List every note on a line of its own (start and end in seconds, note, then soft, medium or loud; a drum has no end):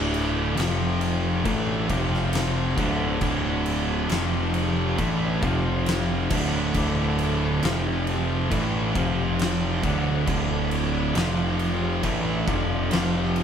0.00 0.54 D1 medium
0.00 0.55 D2 medium
0.00 0.56 A2 medium
0.00 0.56 D3 loud
0.00 0.56 D4 medium
0.00 0.56 A4 medium
0.00 0.56 D5 medium
0.14 crash medium
0.55 1.42 F1 loud
0.55 1.43 F2 medium
0.55 1.44 C3 loud
0.55 1.44 F3 loud
0.55 1.46 F4 medium
0.55 1.46 C5 medium
0.55 1.45 G5 medium
0.55 crash medium
0.60 snare loud
1.01 crash medium
1.45 1.87 A1 loud
1.45 1.88 A2 loud
1.45 1.88 E3 loud
1.45 1.89 A3 loud
1.45 1.91 D4 medium
1.45 1.91 A4 medium
1.45 1.91 D5 medium
1.45 kick loud
1.45 crash medium
1.89 2.74 F1 loud
1.89 2.76 F2 loud
1.89 2.77 C3 loud
1.89 2.77 F3 loud
1.89 2.78 F4 medium
1.89 2.78 C5 medium
1.89 2.78 G5 medium
1.89 kick loud
1.89 crash medium
2.14 snare soft
2.33 snare loud
2.33 crash medium
2.77 3.18 D1 medium
2.77 3.20 D2 medium
2.77 3.20 A2 medium
2.77 3.21 D3 medium
2.77 kick loud
2.77 crash medium
2.81 4.11 D4 medium
2.81 4.11 A4 medium
2.81 4.11 D5 medium
3.21 4.06 D1 loud
3.21 4.09 D2 medium
3.21 4.09 A2 loud
3.21 4.10 D3 loud
3.21 kick loud
3.21 crash medium
3.66 crash medium
4.09 4.94 F1 loud
4.09 4.97 F2 loud
4.09 4.97 C3 loud
4.09 4.97 F3 loud
4.09 4.98 F4 medium
4.09 4.99 C5 medium
4.09 4.99 G5 medium
4.09 snare loud
4.09 crash medium
4.54 crash medium
4.98 5.39 A1 loud
4.98 5.41 A2 loud
4.98 5.42 E3 loud
4.98 5.42 A3 loud
4.98 5.43 D4 medium
4.98 5.43 A4 medium
4.98 5.43 D5 medium
4.98 kick loud
4.98 crash medium
5.41 6.27 F1 loud
5.41 6.30 F2 medium
5.41 6.30 C3 loud
5.41 6.30 F3 loud
5.41 6.29 F4 medium
5.41 6.29 C5 medium
5.41 6.29 G5 medium
5.41 kick loud
5.41 crash medium
5.86 snare loud
5.86 crash medium
6.30 6.71 D1 medium
6.30 6.73 D2 medium
6.30 6.73 A2 medium
6.30 6.74 D3 loud
6.30 7.62 D4 medium
6.30 7.63 A4 medium
6.30 7.63 D5 medium
6.30 kick loud
6.30 crash loud
6.74 7.59 D1 loud
6.74 7.62 D2 medium
6.74 7.62 A2 medium
6.74 7.62 D3 loud
6.74 kick loud
6.74 crash medium
7.19 crash medium
7.63 8.47 F1 loud
7.63 8.50 F2 loud
7.63 8.50 C3 loud
7.63 8.50 F3 loud
7.63 8.51 F4 medium
7.63 8.50 C5 medium
7.63 8.51 G5 medium
7.63 snare loud
7.63 crash medium
8.07 crash medium
8.50 8.92 A1 loud
8.50 8.93 A2 loud
8.50 8.94 E3 loud
8.50 8.94 A3 loud
8.50 8.95 D4 medium
8.50 8.94 A4 medium
8.50 8.94 D5 medium
8.50 kick loud
8.50 crash medium
8.95 9.79 F1 loud
8.95 9.82 F2 medium
8.95 9.82 C3 loud
8.95 9.83 F3 loud
8.95 9.83 F4 medium
8.95 9.83 C5 medium
8.95 9.83 G5 medium
8.95 kick loud
8.95 crash medium
9.39 snare loud
9.39 crash medium
9.83 10.24 D1 medium
9.83 10.26 D2 loud
9.83 10.26 A2 loud
9.83 10.26 D3 medium
9.83 11.15 D4 medium
9.83 11.15 A4 medium
9.83 11.15 D5 medium
9.83 kick loud
9.83 crash medium
10.27 11.11 D1 loud
10.27 11.14 D2 medium
10.27 11.14 A2 loud
10.27 11.14 D3 loud
10.27 kick loud
10.27 crash medium
10.71 crash medium
11.15 11.99 F1 loud
11.15 12.02 F2 loud
11.15 12.02 C3 loud
11.15 12.02 F3 loud
11.15 12.04 F4 medium
11.15 12.03 C5 medium
11.15 12.03 G5 medium
11.15 snare loud
11.15 crash medium
11.59 crash medium
12.03 12.45 A1 loud
12.03 12.47 A2 medium
12.03 12.47 E3 loud
12.03 12.47 A3 loud
12.03 12.92 D4 medium
12.03 12.92 A4 medium
12.03 12.92 D5 medium
12.03 kick loud
12.03 crash medium
12.47 12.89 F1 medium
12.47 12.90 F2 medium
12.47 12.90 C3 loud
12.47 12.91 F3 loud
12.47 kick loud
12.47 crash medium
12.90 13.43 F1 loud
12.90 13.43 F2 loud
12.90 13.43 C3 medium
12.90 13.43 F3 loud
12.90 13.43 F4 medium
12.90 13.43 C5 medium
12.90 13.43 G5 medium
12.90 snare loud
12.90 crash medium
13.36 crash medium